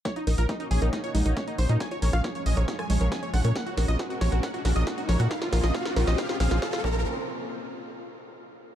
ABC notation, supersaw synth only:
X:1
M:4/4
L:1/16
Q:1/4=137
K:Bbm
V:1 name="Supersaw synth"
d E E B E E A E E d E E d E c E | a d d f d d e d d a d d a d g d | g G G e G G d G g G G e G G d G | f F F e f F F e f F f F f F b2 |
z16 |]